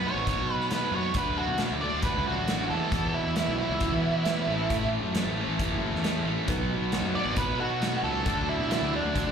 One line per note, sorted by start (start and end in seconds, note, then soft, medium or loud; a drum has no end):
0.07 0.27 B2 medium
0.07 0.28 F#3 medium
0.07 0.28 B3 medium
0.07 0.28 D#4 medium
0.07 0.29 F#4 medium
0.07 0.52 C#5 medium
0.14 0.36 G#1 medium
0.27 0.71 B2 medium
0.27 0.72 F#3 medium
0.27 0.73 B3 medium
0.27 0.73 D#4 medium
0.27 0.73 F#4 loud
0.27 kick loud
0.27 closed hi-hat medium
0.37 0.90 B2 medium
0.52 0.70 B4 medium
0.61 snare soft
0.71 0.93 B2 medium
0.71 0.94 F#3 medium
0.71 0.94 B3 medium
0.71 0.95 D#4 medium
0.71 0.96 F#4 medium
0.71 0.94 B4 medium
0.71 snare medium
0.71 closed hi-hat medium
0.91 1.13 F#2 medium
0.91 1.15 B2 medium
0.91 1.16 F#3 medium
0.95 1.15 B3 medium
0.95 1.16 D#4 medium
0.95 1.17 F#4 medium
0.95 1.16 C#5 medium
1.14 1.47 D2 medium
1.14 1.59 D3 medium
1.14 1.61 F#3 loud
1.14 1.60 A3 loud
1.14 1.61 D4 medium
1.14 1.62 F#4 loud
1.14 1.38 B4 medium
1.14 kick loud
1.14 closed hi-hat medium
1.38 1.59 F#4 medium
1.48 1.69 B2 medium
1.58 1.81 D3 medium
1.58 1.81 F#3 medium
1.58 1.82 A3 medium
1.58 snare loud
1.58 closed hi-hat medium
1.62 1.83 D4 medium
1.62 1.83 F#4 medium
1.70 1.92 D2 medium
1.81 2.04 D3 medium
1.81 2.05 F#3 medium
1.81 2.05 A3 medium
1.81 2.06 D4 medium
1.81 2.06 F#4 medium
1.81 2.03 D5 medium
1.94 2.14 D2 medium
2.02 2.47 D3 loud
2.02 2.48 F#3 medium
2.02 2.48 A3 medium
2.02 2.25 B4 medium
2.02 kick loud
2.02 closed hi-hat medium
2.07 2.48 D4 medium
2.07 2.49 F#4 loud
2.15 2.37 C#2 medium
2.27 2.69 F#4 medium
2.37 2.69 A1 loud
2.48 2.69 D3 medium
2.48 2.69 F#3 loud
2.48 2.70 A3 medium
2.48 2.70 D4 loud
2.48 2.70 F#4 loud
2.48 snare loud
2.48 closed hi-hat medium
2.70 2.81 E2 medium
2.70 2.92 E2 medium
2.70 2.94 B2 medium
2.70 2.95 E3 medium
2.70 2.94 B3 medium
2.70 2.95 E4 loud
2.70 2.95 F#4 medium
2.70 3.13 A4 loud
2.92 3.13 E2 loud
2.92 3.37 E2 loud
2.92 3.37 B2 loud
2.92 3.39 E3 loud
2.92 3.38 B3 loud
2.92 3.40 E4 loud
2.92 kick loud
2.92 closed hi-hat medium
2.96 3.39 F#4 loud
3.14 3.36 E4 medium
3.26 3.47 E2 medium
3.36 3.61 E2 medium
3.36 3.60 B2 medium
3.36 3.62 E3 medium
3.36 3.61 B3 medium
3.36 3.57 E4 medium
3.36 snare loud
3.36 closed hi-hat medium
3.40 3.62 E4 medium
3.40 3.62 F#4 medium
3.48 3.59 B1 medium
3.58 3.81 E2 medium
3.58 3.82 B2 medium
3.58 3.82 E3 medium
3.58 4.88 E4 medium
3.63 3.82 B3 medium
3.63 3.82 E4 loud
3.63 3.83 F#4 medium
3.70 3.91 C#2 medium
3.80 4.25 E2 medium
3.80 4.26 B2 medium
3.80 4.26 E3 loud
3.80 4.27 B3 loud
3.80 4.26 E4 loud
3.80 4.27 F#4 medium
3.80 kick loud
3.80 closed hi-hat medium
3.92 4.45 E3 medium
4.25 4.47 E2 medium
4.25 4.47 B2 medium
4.25 4.47 E3 loud
4.25 4.48 B3 medium
4.25 4.47 E4 medium
4.25 4.48 F#4 medium
4.25 snare loud
4.25 closed hi-hat medium
4.47 4.69 A1 medium
4.47 4.72 A2 medium
4.47 4.72 E3 medium
4.47 4.72 A3 medium
4.47 4.73 C#4 medium
4.51 4.73 A4 loud
4.68 5.12 A2 medium
4.68 5.02 A2 medium
4.68 kick loud
4.68 closed hi-hat medium
4.73 5.16 A2 loud
4.73 5.16 E3 loud
4.73 5.16 A3 loud
4.73 5.18 C#4 loud
4.73 5.17 A4 loud
5.03 5.24 F#2 medium
5.15 5.37 A2 medium
5.15 5.37 E3 medium
5.15 5.38 A3 medium
5.15 5.39 A4 medium
5.15 snare loud
5.15 closed hi-hat medium
5.19 5.38 C#4 medium
5.25 5.47 A1 medium
5.38 5.61 A2 medium
5.38 5.61 E3 medium
5.38 5.62 A3 medium
5.38 5.63 C#4 medium
5.38 5.62 A4 medium
5.48 5.69 A1 medium
5.57 6.00 A2 loud
5.57 6.01 E3 medium
5.57 6.02 A3 medium
5.57 kick loud
5.57 closed hi-hat medium
5.62 6.05 A2 medium
5.62 6.05 E3 medium
5.62 6.05 A3 loud
5.62 6.07 C#4 loud
5.62 6.06 A4 loud
5.71 5.93 F#1 medium
5.92 6.24 E2 loud
5.92 snare soft
6.01 6.23 A2 medium
6.01 snare loud
6.01 closed hi-hat medium
6.06 6.25 A2 medium
6.06 6.26 E3 medium
6.06 6.26 A3 medium
6.06 6.27 C#4 medium
6.06 6.27 A4 loud
6.25 6.36 A1 medium
6.25 6.47 A2 medium
6.25 6.47 E3 medium
6.25 6.47 A3 medium
6.25 6.48 C#4 medium
6.25 6.48 A4 medium
6.48 6.69 B1 medium
6.48 6.92 B2 loud
6.48 6.94 F#3 loud
6.48 6.93 B3 loud
6.48 7.19 D#4 medium
6.48 6.93 D#4 loud
6.48 7.19 F#4 medium
6.48 6.94 F#4 loud
6.48 7.19 B4 medium
6.48 kick loud
6.48 closed hi-hat medium
6.81 7.01 B1 medium
6.92 7.14 B2 medium
6.92 7.15 F#3 medium
6.92 7.14 B3 medium
6.92 7.15 D#4 medium
6.92 7.17 F#4 loud
6.92 snare loud
6.92 closed hi-hat medium
7.02 7.13 F#2 medium
7.15 7.35 B2 medium
7.15 7.36 F#3 medium
7.15 7.36 B3 medium
7.15 7.36 D#4 medium
7.15 7.38 F#4 medium
7.15 7.37 D5 medium
7.25 7.47 G#1 medium
7.36 7.80 B2 medium
7.36 7.81 F#3 medium
7.36 7.81 B3 loud
7.36 7.81 D#4 loud
7.36 7.83 F#4 loud
7.36 7.59 B4 medium
7.36 kick loud
7.36 closed hi-hat medium
7.48 8.01 B2 medium
7.57 7.78 B2 medium
7.57 7.80 F#3 medium
7.57 7.79 B3 loud
7.57 8.11 D#4 medium
7.57 8.12 F#4 medium
7.57 8.03 F#4 medium
7.57 8.12 A4 medium
7.81 8.01 B2 medium
7.81 8.03 F#3 medium
7.81 8.03 B3 medium
7.81 8.04 D#4 medium
7.81 8.04 F#4 loud
7.81 snare loud
7.81 closed hi-hat medium
8.03 8.24 C#2 medium
8.03 8.24 B2 medium
8.03 8.26 F#3 medium
8.03 8.25 B3 medium
8.03 8.25 D#4 medium
8.03 8.27 F#4 medium
8.03 8.47 A4 medium
8.25 8.58 D2 medium
8.25 8.68 D3 loud
8.25 8.70 F#3 loud
8.25 8.69 A3 loud
8.25 8.97 D4 medium
8.25 8.70 D4 loud
8.25 8.97 F#4 medium
8.25 8.70 F#4 loud
8.25 8.97 A4 medium
8.25 kick loud
8.25 closed hi-hat medium
8.49 8.70 E4 medium
8.59 8.80 B2 medium
8.69 8.92 D3 medium
8.69 8.92 F#3 loud
8.69 8.93 A3 medium
8.69 8.93 D4 loud
8.69 8.93 E4 medium
8.69 8.93 F#4 loud
8.69 snare loud
8.69 closed hi-hat medium
8.81 9.03 D2 medium
8.93 9.12 D3 medium
8.93 9.13 F#3 medium
8.93 9.13 A3 medium
8.93 9.14 D4 medium
8.93 9.32 D4 loud
8.93 9.14 F#4 medium
9.04 9.25 D2 medium
9.14 9.32 D3 loud
9.14 9.32 F#3 loud
9.14 9.32 A3 loud
9.14 9.32 D4 loud
9.14 9.32 F#4 loud
9.14 kick loud
9.14 closed hi-hat medium
9.27 9.32 C#2 medium